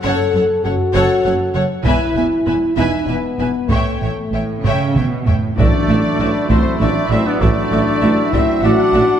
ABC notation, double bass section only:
X:1
M:3/4
L:1/8
Q:1/4=98
K:Alyd
V:1 name="Double bass section" clef=bass
F,,, F,,, F,,, F,,, F,,, F,,, | E,,, E,,, E,,, E,,, E,,, E,,, | A,,, A,,, A,,, A,,, A,,, A,,, | [K:Dmix] A,,, A,,, A,,, A,,, A,,, A,,, |
A,,, A,,, A,,, A,,, A,,, A,,, |]